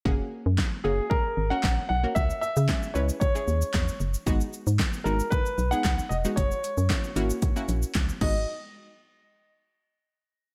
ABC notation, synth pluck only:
X:1
M:4/4
L:1/16
Q:1/4=114
K:F#mix
V:1 name="Synth pluck"
[A,CFG]4- [A,CFG] z [A,CFG]4 z [A,CFA]3 z [A,CFA] | z4 [G,CEG]2 [G,CEB]2 z [G,CEG]6 z | [G,B,DF]4- [G,B,DF] z [G,B,DF]4 z [G,B,DG]3 z [G,B,DF] | z4 [A,CEF]2 [A,CEF]2 z [A,CEF]4- [A,CEF] [G,B,DF]2 |
z16 |]